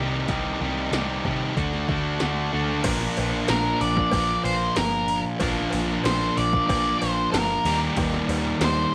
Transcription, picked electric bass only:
0, 0, Header, 1, 2, 480
1, 0, Start_track
1, 0, Tempo, 641026
1, 209, Time_signature, 4, 2, 24, 8
1, 6699, End_track
2, 0, Start_track
2, 0, Title_t, "Picked electric bass"
2, 0, Program_c, 0, 34
2, 0, Note_on_c, 0, 36, 82
2, 182, Note_off_c, 0, 36, 0
2, 211, Note_on_c, 0, 36, 82
2, 424, Note_off_c, 0, 36, 0
2, 455, Note_on_c, 0, 36, 89
2, 666, Note_off_c, 0, 36, 0
2, 687, Note_on_c, 0, 36, 72
2, 902, Note_off_c, 0, 36, 0
2, 933, Note_on_c, 0, 48, 82
2, 1145, Note_off_c, 0, 48, 0
2, 1170, Note_on_c, 0, 38, 87
2, 1384, Note_off_c, 0, 38, 0
2, 1410, Note_on_c, 0, 38, 81
2, 1623, Note_off_c, 0, 38, 0
2, 1661, Note_on_c, 0, 38, 85
2, 1869, Note_off_c, 0, 38, 0
2, 1897, Note_on_c, 0, 38, 71
2, 2107, Note_off_c, 0, 38, 0
2, 2127, Note_on_c, 0, 34, 89
2, 2305, Note_off_c, 0, 34, 0
2, 2383, Note_on_c, 0, 34, 88
2, 2555, Note_off_c, 0, 34, 0
2, 2613, Note_on_c, 0, 34, 85
2, 2789, Note_off_c, 0, 34, 0
2, 2853, Note_on_c, 0, 34, 91
2, 3028, Note_off_c, 0, 34, 0
2, 3087, Note_on_c, 0, 34, 96
2, 3265, Note_off_c, 0, 34, 0
2, 3326, Note_on_c, 0, 34, 86
2, 3504, Note_off_c, 0, 34, 0
2, 3570, Note_on_c, 0, 31, 94
2, 3923, Note_off_c, 0, 31, 0
2, 4049, Note_on_c, 0, 34, 86
2, 4226, Note_off_c, 0, 34, 0
2, 4291, Note_on_c, 0, 34, 96
2, 4467, Note_off_c, 0, 34, 0
2, 4527, Note_on_c, 0, 34, 92
2, 4704, Note_off_c, 0, 34, 0
2, 4773, Note_on_c, 0, 34, 95
2, 4948, Note_off_c, 0, 34, 0
2, 5009, Note_on_c, 0, 34, 107
2, 5186, Note_off_c, 0, 34, 0
2, 5256, Note_on_c, 0, 34, 85
2, 5430, Note_off_c, 0, 34, 0
2, 5490, Note_on_c, 0, 31, 98
2, 5667, Note_off_c, 0, 31, 0
2, 5728, Note_on_c, 0, 39, 97
2, 5905, Note_off_c, 0, 39, 0
2, 5964, Note_on_c, 0, 39, 89
2, 6142, Note_off_c, 0, 39, 0
2, 6206, Note_on_c, 0, 39, 99
2, 6384, Note_off_c, 0, 39, 0
2, 6443, Note_on_c, 0, 39, 98
2, 6622, Note_off_c, 0, 39, 0
2, 6699, End_track
0, 0, End_of_file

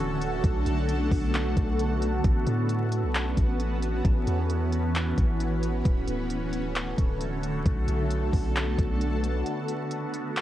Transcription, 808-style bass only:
0, 0, Header, 1, 2, 480
1, 0, Start_track
1, 0, Tempo, 451128
1, 466, Time_signature, 4, 2, 24, 8
1, 11079, End_track
2, 0, Start_track
2, 0, Title_t, "808-style bass"
2, 0, Program_c, 0, 38
2, 0, Note_on_c, 0, 26, 104
2, 439, Note_off_c, 0, 26, 0
2, 467, Note_on_c, 0, 35, 113
2, 697, Note_off_c, 0, 35, 0
2, 706, Note_on_c, 0, 35, 103
2, 1167, Note_off_c, 0, 35, 0
2, 1186, Note_on_c, 0, 35, 101
2, 1647, Note_off_c, 0, 35, 0
2, 1669, Note_on_c, 0, 35, 103
2, 2359, Note_off_c, 0, 35, 0
2, 2387, Note_on_c, 0, 33, 118
2, 2617, Note_off_c, 0, 33, 0
2, 2627, Note_on_c, 0, 45, 103
2, 3227, Note_on_c, 0, 35, 102
2, 3243, Note_off_c, 0, 45, 0
2, 3569, Note_off_c, 0, 35, 0
2, 3589, Note_on_c, 0, 33, 108
2, 4279, Note_off_c, 0, 33, 0
2, 4307, Note_on_c, 0, 33, 119
2, 4537, Note_off_c, 0, 33, 0
2, 4548, Note_on_c, 0, 40, 106
2, 5469, Note_off_c, 0, 40, 0
2, 5509, Note_on_c, 0, 33, 105
2, 6199, Note_off_c, 0, 33, 0
2, 6227, Note_on_c, 0, 26, 113
2, 6457, Note_off_c, 0, 26, 0
2, 6468, Note_on_c, 0, 26, 103
2, 7389, Note_off_c, 0, 26, 0
2, 7429, Note_on_c, 0, 26, 107
2, 8119, Note_off_c, 0, 26, 0
2, 8147, Note_on_c, 0, 35, 119
2, 8377, Note_off_c, 0, 35, 0
2, 8386, Note_on_c, 0, 35, 103
2, 8847, Note_off_c, 0, 35, 0
2, 8866, Note_on_c, 0, 35, 106
2, 9327, Note_off_c, 0, 35, 0
2, 9348, Note_on_c, 0, 35, 106
2, 10039, Note_off_c, 0, 35, 0
2, 11079, End_track
0, 0, End_of_file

